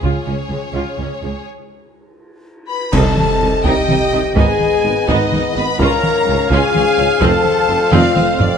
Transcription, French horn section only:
0.03 F3 C#4
2.69 B4
2.92 A4
3.66 G4
4.37 G#4
5.08 D#4
5.54 B4
5.80 A#4
6.51 G#4
7.23 A4
7.95 F4

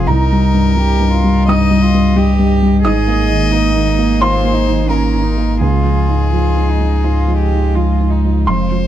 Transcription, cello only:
0.08 D#4
0.77 G4
1.12 F4
1.49 D#4
1.82 F4
2.16 G4
2.84 G#4
3.53 D#4
4.20 F4
4.54 D#4
4.87 C#4
5.23 D#4
5.60 F4
6.32 F4
6.69 D#4
7.04 F4
7.39 G4
7.75 F4
8.11 D#4

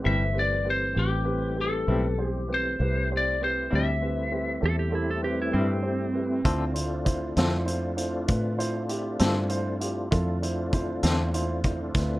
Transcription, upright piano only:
0.02 C4 G4 B4
0.33 C4 G4 B4
0.64 C4 G4 B4
0.94 C4 G4 B4
1.25 C4 G4 B4
1.55 C4 G4 B4
1.86 C4 G4 B4
2.18 C4 G4 C5
2.48 C4 G4 B4
2.80 C4 G4 B4
3.11 C4 G4 C5
3.41 C4 G4 B4
3.72 C4 G4 C5
4.01 C4 G4 B4
4.31 C4 G4 B4
4.61 C4 G4 A4
4.91 C4 G4 A4
5.22 C4 G4 B4
5.52 C4 G4 B4
5.83 C4 G4 C5
6.13 C4 G4 B4
6.44 E4 F4 C5
6.74 E4 F4 C5
7.05 E4 F4 C5
7.36 E4 F4 C5
7.65 E4 F4 C5
7.97 E4 F4 C5
8.27 E4 F4 B4
8.58 E4 F4 C5
8.89 E4 F4 G4
9.18 E4 F4 C5
9.49 E4 F4 C5
9.79 E4 F4 G4
10.11 E4 F4 A4
10.42 E4 F4 C5
10.72 E4 F4 C5
11.03 E4 F4 C5
11.34 E4 F4 C5
11.64 E4 F4 C5
11.94 E4 F4 B4

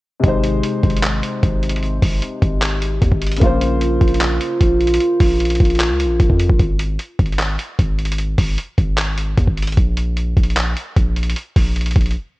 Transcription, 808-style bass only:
0.24 G#1
0.83 G#1
1.43 G#1
2.02 G#1
2.42 G#1
3.02 D#2
3.12 G#1
3.42 A#1
4.01 A#1
4.61 A#1
5.20 A#1
5.60 A#1
5.90 C#2
6.05 A#1
6.20 A#1
6.30 F2
6.49 A#1
6.59 G#1
7.19 G#1
7.79 G#1
8.38 G#1
8.78 G#1
9.38 D#2
9.47 G#1
9.77 A#1
10.37 A#1
10.97 A#1
11.56 A#1
11.96 A#1

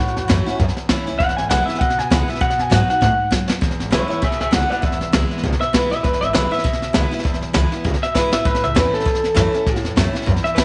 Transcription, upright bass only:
0.00 A1
0.16 E2
0.29 F#2
0.47 muted upright bass stroke
0.59 F#2
0.77 muted upright bass stroke
0.89 F#2
1.07 C#2
1.20 E1
1.37 G#1
1.50 B1
1.68 muted upright bass stroke
1.81 C#2
1.98 C#2
2.11 C#2
2.28 muted upright bass stroke
2.41 B1
2.58 F#2
2.72 G#2
2.88 muted upright bass stroke
3.02 A2
3.19 muted upright bass stroke
3.31 G#2
3.49 E2
3.62 E1
3.79 G#1
3.92 B1
4.09 muted upright bass stroke
4.22 C#2
4.40 C#2
4.53 C#2
4.70 muted upright bass stroke
4.83 E1
5.00 B1
5.13 C#2
5.30 muted upright bass stroke
5.43 C#2
5.61 muted upright bass stroke
5.74 C#2
5.91 A1
6.04 E1
6.21 G#1
6.34 B1
6.51 muted upright bass stroke
6.65 C#2
6.81 C#2
6.95 C#2
7.11 muted upright bass stroke
7.24 E1
7.41 B1
7.54 C#2
7.72 muted upright bass stroke
7.85 C#2
8.02 muted upright bass stroke
8.15 C#2
8.32 A1
8.45 A1
8.62 C#2
8.76 E2
8.93 muted upright bass stroke
9.06 F#2
9.23 F#2
9.36 F#2
9.53 muted upright bass stroke
9.66 A1
9.84 E2
9.97 F#2
10.14 muted upright bass stroke
10.27 F#2
10.44 muted upright bass stroke
10.57 F#2

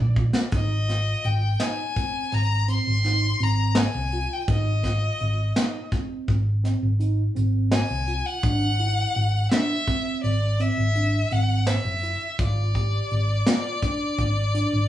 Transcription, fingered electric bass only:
0.00 A#1
0.53 G#1
1.24 G#1
2.32 G#1
2.87 G#1
3.40 G#1
3.95 C2
4.48 G#1
5.21 G#1
6.28 G#1
6.82 G#1
7.36 G#1
7.90 C2
8.43 G#1
9.16 G#1
10.24 G#1
10.78 G#1
11.32 G#1
11.85 F#1
12.40 G#1
13.11 G#1
14.18 G#1
14.73 G#1

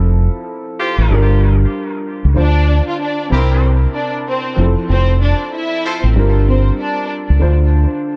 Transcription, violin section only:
2.38 D4 D5
2.88 F4 F5
3.01 D4 D5
3.31 C4 C5
3.94 D4 D5
4.28 C4 C5
4.90 C4 C5
5.21 D4 D5
5.54 E4 E5
6.02 C4 C5
6.47 C4 C5
6.79 D4 D5

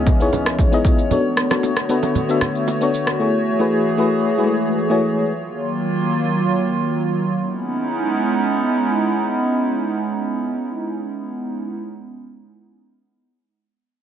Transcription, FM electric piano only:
Already playing: B3 D#4 E4 G#4 C#5 D#5 E5
0.20 B3 D#4 E4 G#4 C#5
0.72 B3 D#4 E4 G#4 D#5
1.11 B3 D4 F#4 A4 C#5
1.50 B3 D4 F#4 A4 C#5
1.89 B3 D4 F#4 A4 B4
2.29 B3 D4 F#4 A4 E5
2.81 B3 D4 F#4 A4 C#5
3.19 A3 E4 F#4 G#4 C#5
3.59 A3 E4 F#4 G#4 B4
3.98 A3 E4 F#4 G#4 B4
4.38 G#3 E4 F#4 G#4 B4
4.44 A3
4.89 A3 E4 F#4 G#4 C#5

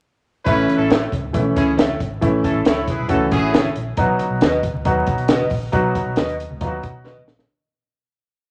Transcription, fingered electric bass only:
0.46 A1
0.78 A1
1.12 C#2
1.34 B1
1.57 C#2
2.00 G#1
2.22 A1
2.54 A1
2.65 C#2
2.99 B1
3.09 C#2
3.32 A1
3.76 A#1
3.97 B1
4.30 B1
4.41 D#2
4.74 C#2
4.85 D#2
5.07 B1
5.51 A#1
5.73 B1
6.06 B1
6.17 D#2
6.50 C#2
6.61 D#2
6.84 B1
7.27 A#1

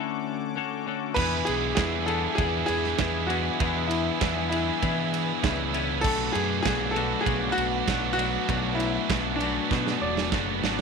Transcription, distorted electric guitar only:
1.16 E3 G#3 B3 E4
1.77 E3 G#3 B3 E4
2.07 E3 G#3 B3 E4
2.38 E3 G#3 B3 E4
3.00 E3 G#3 B3 E4
3.30 E3 G#3 B3 E4
3.61 E3 G#3 B3 E4
4.22 E3 G#3 B3 E4
4.52 E3 G#3 B3 E4
4.82 E3 G#3 B3 E4
5.42 E3 G#3 B3 E4
5.74 E3 G#3 B3 E4
6.03 B2 F#3 B3 D4
6.65 B2 F#3 B3 D4
6.96 B2 F#3 B3 D4
7.25 B2 F#3 B3 D4
7.87 B2 F#3 B3 D4
8.17 B2 F#3 B3 D4
8.48 B2 F#3 B3 D4
9.10 B2 F#3 B3 D4
9.40 B2 F#3 B3 D4
9.71 B2 F#3 B3 D4
10.32 B2 F#3 B3 D4
10.63 B2 F#3 B3 D4

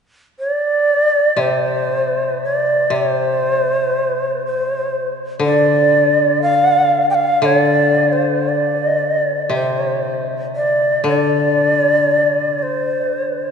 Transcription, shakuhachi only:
0.39 D5
1.41 C5
2.44 D5
2.95 C5
4.46 C5
5.45 D5
6.42 F5
7.10 G5
7.14 F5
7.45 C#5
7.58 D5
8.12 C5
8.49 D5
9.54 C5
10.56 D5
11.08 D5
12.59 C5 D5

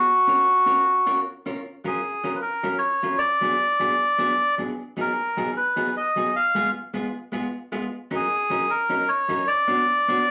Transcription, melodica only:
Already playing: F#4
1.87 G#4
2.36 B4
2.42 A#4
2.78 C#5
3.19 D5
5.01 A#4
5.57 B4
5.97 D#5
6.36 F5
8.16 G#4
8.70 A#4
9.08 C#5
9.47 D5

